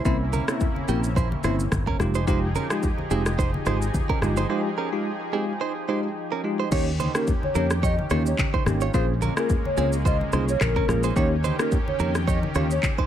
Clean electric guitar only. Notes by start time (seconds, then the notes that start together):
0.05 E4 C5
0.33 C#4 A#4
0.89 A#3 G4
1.17 E4 C5
1.44 E4 C5
1.87 C#4 A#4
2.15 D#4 C5
2.28 D#4 C5
2.56 C#4 A#4
3.11 C4 G#4
3.39 D#4 C5
3.67 D#4 C5
4.10 C#4 A#4
4.37 D#4 C5
4.50 D#4 C5
4.78 C#4 A#4
5.33 C4 G#4
5.61 D#4 C5
5.89 D#4 C5
6.32 C#4 A#4
6.60 D#4 C5
6.72 G4 C#5
7.00 D#4 C5
7.55 C#4 A#4
7.83 G4 C#5
8.11 F4 C#5
8.54 D#4 C5
8.82 F4 C#5
8.94 F4 C5
9.22 C#4 A#4
9.78 C4 G#4
10.05 F4 C5
10.33 D#4 C5
10.76 C#4 A#4
11.04 D#4 C5
11.17 G4 C#5
11.44 D#4 C5
12.00 C#4 A#4
12.28 G4 C#5
12.56 F4 C#5
12.99 D#4 C5